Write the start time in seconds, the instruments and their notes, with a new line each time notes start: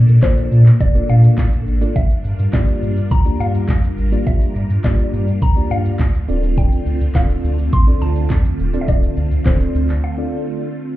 Already playing: string machine A#3 D4 A4, synth pluck D5
0.08 sub bass A#2, closed hi-hat, shaker
0.22 sub bass A#1, tine electric piano A#3 D4 F4 A4 D5, synth pluck C5, kick, snare, clap, shaker
0.37 closed hi-hat, shaker
0.52 sub bass A#2, open hi-hat, shaker
0.66 clap, closed hi-hat, shaker
0.80 sub bass F1, synth pluck D5, kick, shaker
0.95 tine electric piano A#3 D4 F4 A4 D5, closed hi-hat, shaker
1.09 sub bass A#2, synth pluck F5, open hi-hat, shaker
1.24 closed hi-hat, shaker
1.38 sub bass A2, kick, snare, clap, shaker
1.53 closed hi-hat, shaker
1.67 sub bass G#1, open hi-hat, shaker
1.81 tine electric piano A#3 D4 F4 A4 D5, closed hi-hat, shaker
1.96 sub bass G1, string machine G3 F4 A#4, synth pluck E5, kick, shaker
2.10 closed hi-hat, shaker
2.24 sub bass G2, open hi-hat, shaker
2.39 sub bass G2, closed hi-hat, shaker
2.53 sub bass G1, tine electric piano A#3 D4 F4 G4 D5, synth pluck D5, kick, snare, clap, shaker
2.68 closed hi-hat, shaker
2.82 sub bass G2, open hi-hat, shaker
2.97 closed hi-hat, shaker
3.11 sub bass D2, synth pluck A#5, kick, shaker
3.25 tine electric piano A#3 D4 F4 G4 D5, closed hi-hat, shaker
3.40 sub bass G2, synth pluck F5, open hi-hat, shaker
3.54 closed hi-hat, shaker
3.69 sub bass F2, kick, snare, clap, shaker
3.83 closed hi-hat, shaker
3.98 sub bass G#1, open hi-hat, shaker
4.12 tine electric piano A#3 D4 F4 G4 D5, closed hi-hat, shaker
4.26 sub bass G1, synth pluck E5, kick, shaker
4.41 closed hi-hat, shaker
4.55 sub bass G2, open hi-hat, shaker
4.70 sub bass G2, closed hi-hat, shaker
4.84 sub bass G1, tine electric piano A#3 D4 F4 G4 D5, synth pluck D5, kick, snare, clap, shaker
4.99 closed hi-hat, shaker
5.13 sub bass G2, open hi-hat, shaker
5.27 closed hi-hat, shaker
5.42 sub bass D2, synth pluck A#5, kick, shaker
5.56 tine electric piano A#3 D4 F4 G4 D5, closed hi-hat, shaker
5.71 sub bass G2, synth pluck F5, open hi-hat, shaker
5.85 closed hi-hat, shaker
5.99 sub bass D2, kick, snare, clap, shaker
6.14 closed hi-hat, shaker
6.28 sub bass D1, string machine D3 A3 C4, tine electric piano C4 D4 F4 A4 D5, open hi-hat, shaker
6.43 closed hi-hat, shaker
6.57 synth pluck G5, kick, shaker
6.72 closed hi-hat, shaker
6.86 sub bass D2, open hi-hat, shaker
7.00 sub bass D2, closed hi-hat, shaker
7.15 sub bass D1, tine electric piano C4 D4 F4 A4 D5, synth pluck F5, kick, snare, clap, shaker
7.29 closed hi-hat, shaker
7.44 sub bass D2, open hi-hat, shaker
7.58 closed hi-hat, shaker
7.73 sub bass A1, synth pluck C6, kick, shaker
7.87 tine electric piano C4 D4 F4 A4 D5, closed hi-hat, shaker
8.01 sub bass D2, synth pluck A5, open hi-hat, shaker
8.16 closed hi-hat, shaker
8.30 sub bass F2, kick, snare, clap, shaker
8.45 closed hi-hat, shaker
8.59 sub bass D#1, open hi-hat, shaker
8.73 tine electric piano C4 D4 F4 A4 D5, closed hi-hat, shaker
8.81 synth pluck E5
8.88 sub bass D1, synth pluck D5, kick, shaker
9.03 closed hi-hat, shaker
9.17 sub bass D2, open hi-hat, shaker
9.31 sub bass D2, closed hi-hat, shaker
9.46 sub bass D1, tine electric piano C4 D4 F4 A4 D5, synth pluck C5, kick, snare, clap, shaker
9.60 closed hi-hat, shaker
9.75 sub bass D2, open hi-hat, shaker
9.89 clap, closed hi-hat, shaker
10.04 synth pluck F5
10.18 tine electric piano C4 D4 F4 A4 D5